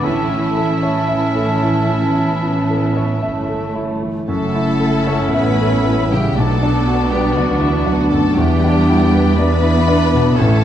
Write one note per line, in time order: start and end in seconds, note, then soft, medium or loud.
0.03 3.20 A1 soft
0.03 2.12 A2 soft
0.03 3.76 E3 medium
0.03 0.96 A3 soft
0.03 3.92 C#4 soft
0.03 0.96 C#4 soft
0.03 3.96 C#4 medium
0.03 3.92 E4 soft
0.03 3.73 E4 medium
0.03 3.72 E5 medium
0.03 3.96 E5 medium
0.03 3.96 A5 soft
0.29 0.71 E4 soft
0.57 0.98 A4 soft
0.83 1.25 C#5 soft
1.08 2.12 A3 medium
1.08 1.51 E5 soft
1.35 1.78 A4 soft
1.63 2.06 E4 soft
1.89 2.33 E3 soft
2.16 3.24 B3 medium
2.16 2.60 E4 soft
2.42 2.86 E3 soft
2.70 3.13 A4 soft
2.97 3.39 C#5 soft
3.22 4.08 G1 soft
3.22 4.29 A3 soft
3.22 3.65 E5 soft
3.49 3.92 A4 soft
3.75 4.18 E4 soft
4.02 4.29 E3 soft
4.28 5.29 F#1 soft
4.28 6.31 F#2 medium
4.28 5.29 A3 medium
4.28 6.32 A3 medium
4.28 6.32 C#4 medium
4.28 6.37 C#4 medium
4.28 6.32 E4 soft
4.28 6.32 E4 medium
4.28 5.30 A4 medium
4.28 6.32 E5 medium
4.28 6.32 F#5 medium
4.28 5.29 A5 medium
4.55 4.97 E4 soft
4.80 5.22 A4 soft
5.07 5.49 C#5 soft
5.33 6.36 A1 medium
5.33 6.10 B3 medium
5.33 6.11 B4 medium
5.33 5.75 E5 soft
5.33 6.10 B5 medium
5.61 6.01 A4 soft
5.87 6.27 E4 soft
6.11 6.37 C#3 soft
6.11 6.35 G3 medium
6.11 6.37 G4 medium
6.11 6.36 G5 medium
6.35 7.32 B1 soft
6.35 8.32 B1 medium
6.35 7.10 A3 medium
6.35 8.35 B3 medium
6.35 10.37 B3 medium
6.35 8.33 B3 medium
6.35 10.37 D4 medium
6.35 8.33 D4 medium
6.35 7.11 A4 medium
6.35 8.30 D5 medium
6.35 8.31 F#5 medium
6.35 7.10 A5 medium
6.63 7.01 D4 soft
6.87 7.25 F#4 soft
7.09 7.34 G3 medium
7.09 7.35 G4 medium
7.09 7.50 B4 soft
7.09 7.34 G5 medium
7.34 8.35 D2 soft
7.34 7.59 F#3 medium
7.34 7.59 F#4 medium
7.34 7.59 F#5 medium
7.38 7.76 D5 soft
7.59 7.83 E3 medium
7.59 7.84 E4 medium
7.59 8.00 F#4 soft
7.59 7.84 E5 medium
7.83 8.09 F#3 medium
7.83 8.26 D4 soft
7.83 8.10 F#4 medium
7.83 8.09 F#5 medium
8.09 8.36 F#2 soft
8.09 8.35 A3 medium
8.09 8.35 A4 medium
8.09 8.34 A5 medium
8.34 10.33 E2 medium
8.34 10.34 E2 medium
8.34 9.37 G3 medium
8.34 9.34 B3 medium
8.34 9.35 B3 medium
8.34 9.34 D4 medium
8.34 9.37 G4 medium
8.34 9.35 D5 medium
8.34 9.35 E5 medium
8.34 9.37 G5 medium
8.65 9.03 D4 soft
8.90 9.28 E4 soft
9.14 9.53 B4 soft
9.36 10.35 B3 medium
9.36 10.39 B3 medium
9.36 10.37 B3 medium
9.36 10.35 D4 medium
9.36 10.37 B4 medium
9.36 10.34 D5 medium
9.36 9.78 D5 medium
9.36 10.13 E5 medium
9.36 10.37 B5 medium
9.63 10.03 E4 soft
9.88 10.27 D4 soft
10.14 10.38 B2 soft
10.36 10.64 A1 medium
10.36 10.64 A3 medium
10.36 10.64 C#4 medium
10.36 10.64 A4 medium
10.36 10.64 C#5 medium
10.36 10.64 E5 medium
10.36 10.64 A5 medium